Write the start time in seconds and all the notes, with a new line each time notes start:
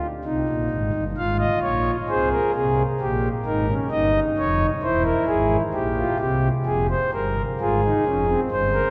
0.24 C2 C3 D#4
0.48 A#1 A#2
0.70 G#1 G#2
0.92 G1 G2
1.17 G#1 G#2 F4 F5
1.39 D#5
1.62 A#1 A#2 C#5
2.09 C2 C3 G#4 C5
2.31 A#4
2.54 C2 C3 G#4
3.00 A#1 A#2 G4
3.46 G#1 G#2 D#4 A#4
3.69 C#4
3.91 G1 G2 D#4 D#5
4.38 F1 F2 C#5
4.83 E1 E2 E4 C5
5.04 A#4
5.28 G#1 G#2 G#4
5.74 A#1 A#2 G4
5.97 F4
6.19 C2 C3 G4
6.66 F1 F2 G#4
6.90 C5
7.13 G1 G2 A#4
7.60 G#1 G#2 F4 G#4
7.84 D#4
8.05 F1 F2 C#4
8.28 C4
8.51 G1 G2 C5
8.74 A#4